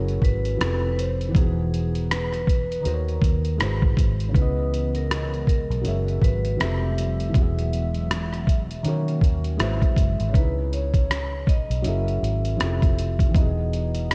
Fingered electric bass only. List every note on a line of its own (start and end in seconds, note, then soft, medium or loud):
0.00 0.21 F#1 medium
0.22 0.58 G#1 medium
0.61 1.32 F1 medium
1.35 2.81 E1 loud
2.86 3.21 D#2 medium
3.22 3.62 D#2 medium
3.60 3.96 G#1 medium
3.98 4.33 G#1 medium
4.35 5.66 C#2 loud
5.70 5.84 B1 medium
5.86 6.21 F#1 medium
6.22 6.58 G#1 medium
6.61 7.31 F1 medium
7.35 8.81 E1 loud
8.85 9.21 D#3 loud
9.22 9.58 D#2 medium
9.60 9.81 G#1 medium
9.97 10.18 F#1 medium
10.20 10.34 G#1 medium
10.35 11.65 C#2 loud
11.70 11.84 B1 medium
11.85 12.21 F#1 medium
12.23 12.58 G#1 medium
12.61 13.31 F1 loud
13.35 14.15 E1 medium